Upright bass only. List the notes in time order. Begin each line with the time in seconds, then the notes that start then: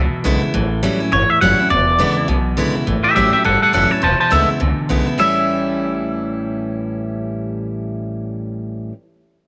Already playing: C#2
0.14 muted upright bass stroke
0.25 B1
0.42 muted upright bass stroke
0.54 A1
1.01 muted upright bass stroke
1.12 G1
1.30 muted upright bass stroke
1.42 F#1
1.71 E1
2.17 muted upright bass stroke
2.28 B1
2.75 muted upright bass stroke
2.87 A1
3.05 muted upright bass stroke
3.16 A1
3.34 muted upright bass stroke
3.46 G1
3.63 muted upright bass stroke
3.74 F#1
3.92 muted upright bass stroke
4.03 E1
4.20 muted upright bass stroke
4.32 D2
4.61 C#2
4.78 muted upright bass stroke
4.90 B1
5.19 A1